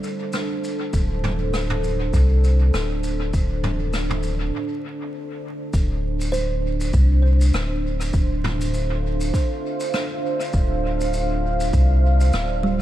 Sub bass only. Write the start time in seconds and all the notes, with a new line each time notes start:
0.94 D1
2.13 C2
2.74 D1
3.33 D1
5.74 D1
6.93 C2
7.53 D1
8.14 D1
10.54 D1
11.73 C2
12.33 D1